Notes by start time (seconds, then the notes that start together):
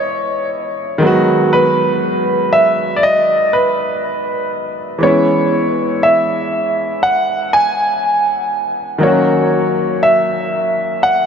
Already playing: E3 G#3 B3 C#4 E4 C#5
0.98 D#3 F#3 G#3
1.05 B3 F#4
1.53 B4
2.53 E5
2.96 D5
3.03 D#5
3.53 B4
4.99 E3 G#3 B3
5.03 C#4 E4 C#5
6.03 E5
7.03 F#5
7.53 G#5
8.98 D#3 F#3
9.03 A#3 C#4 C#5
9.07 F#4
10.03 E5
11.03 F#5